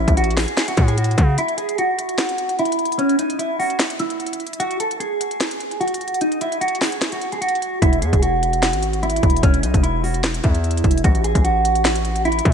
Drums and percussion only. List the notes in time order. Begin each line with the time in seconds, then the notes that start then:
0.08 kick, closed hi-hat
0.17 closed hi-hat
0.24 closed hi-hat
0.31 closed hi-hat
0.37 snare, clap, open hi-hat
0.48 closed hi-hat
0.57 snare, clap, closed hi-hat
0.68 closed hi-hat
0.77 kick, closed hi-hat
0.88 closed hi-hat
0.98 closed hi-hat
1.04 closed hi-hat
1.11 closed hi-hat
1.18 kick, closed hi-hat
1.38 closed hi-hat
1.48 closed hi-hat
1.58 closed hi-hat
1.69 closed hi-hat
1.78 closed hi-hat
1.99 closed hi-hat
2.09 closed hi-hat
2.18 snare, clap, closed hi-hat
2.29 closed hi-hat
2.38 closed hi-hat
2.49 closed hi-hat
2.59 closed hi-hat
2.65 closed hi-hat
2.72 closed hi-hat
2.79 closed hi-hat
2.85 closed hi-hat
2.92 closed hi-hat
2.99 closed hi-hat
3.09 closed hi-hat
3.19 closed hi-hat
3.30 closed hi-hat
3.39 closed hi-hat
3.60 open hi-hat
3.70 closed hi-hat
3.79 snare, clap, closed hi-hat
3.90 closed hi-hat
3.99 closed hi-hat
4.10 closed hi-hat
4.20 closed hi-hat
4.26 closed hi-hat
4.33 closed hi-hat
4.40 closed hi-hat
4.47 closed hi-hat
4.53 closed hi-hat
4.60 closed hi-hat
4.71 closed hi-hat
4.80 closed hi-hat
4.91 closed hi-hat
5.00 closed hi-hat
5.21 closed hi-hat
5.31 closed hi-hat
5.41 snare, clap, closed hi-hat
5.51 closed hi-hat
5.60 closed hi-hat
5.71 closed hi-hat
5.81 closed hi-hat
5.88 closed hi-hat
5.94 closed hi-hat
6.01 closed hi-hat
6.08 closed hi-hat
6.14 closed hi-hat
6.21 closed hi-hat
6.32 closed hi-hat
6.41 closed hi-hat
6.52 closed hi-hat
6.61 closed hi-hat
6.68 closed hi-hat
6.75 closed hi-hat
6.81 snare, clap, open hi-hat
6.92 closed hi-hat
7.01 snare, clap, closed hi-hat
7.12 closed hi-hat
7.21 closed hi-hat
7.32 closed hi-hat
7.42 closed hi-hat
7.49 closed hi-hat
7.55 closed hi-hat
7.62 closed hi-hat
7.82 kick, closed hi-hat
7.93 closed hi-hat
8.02 closed hi-hat
8.13 kick, closed hi-hat
8.23 closed hi-hat
8.43 closed hi-hat
8.53 closed hi-hat
8.63 snare, clap, closed hi-hat
8.73 closed hi-hat
8.82 closed hi-hat
8.93 closed hi-hat
9.03 closed hi-hat
9.10 closed hi-hat
9.16 closed hi-hat
9.23 kick, closed hi-hat
9.30 closed hi-hat
9.37 closed hi-hat
9.43 kick, closed hi-hat
9.54 closed hi-hat
9.63 closed hi-hat
9.74 kick, closed hi-hat
9.84 closed hi-hat
10.04 open hi-hat
10.14 closed hi-hat
10.24 snare, clap, closed hi-hat
10.34 closed hi-hat
10.44 kick, closed hi-hat
10.55 closed hi-hat
10.64 closed hi-hat
10.71 closed hi-hat
10.77 closed hi-hat
10.84 kick, closed hi-hat
10.91 closed hi-hat
10.98 closed hi-hat
11.04 kick, closed hi-hat
11.15 closed hi-hat
11.24 closed hi-hat
11.35 kick, closed hi-hat
11.45 closed hi-hat
11.65 closed hi-hat
11.75 closed hi-hat
11.85 snare, clap, closed hi-hat
11.95 closed hi-hat
12.05 closed hi-hat
12.16 closed hi-hat
12.25 closed hi-hat
12.32 closed hi-hat
12.39 closed hi-hat
12.45 kick, closed hi-hat